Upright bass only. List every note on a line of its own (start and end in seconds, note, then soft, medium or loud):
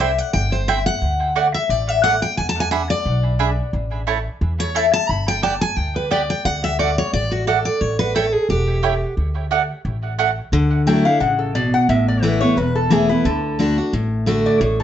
0.00 0.19 C2 medium
0.34 0.87 G1 medium
1.02 1.55 D2 medium
1.69 2.23 A1 medium
2.38 2.91 E2 medium
3.06 3.59 B1 medium
3.73 4.27 A1 medium
4.41 4.95 E2 medium
5.09 5.63 G1 loud
5.77 6.30 D2 medium
6.45 6.99 D2 medium
7.13 7.67 A1 medium
7.81 8.35 A1 loud
8.49 9.02 E1 medium
9.17 9.71 D2 medium
9.85 10.38 A1 loud
10.52 11.06 D2 medium
11.21 11.74 A1 medium
11.89 12.42 A1 loud
12.57 13.10 E1 medium
13.25 13.78 D2 loud
13.93 14.47 A1 medium
14.61 14.83 A1 loud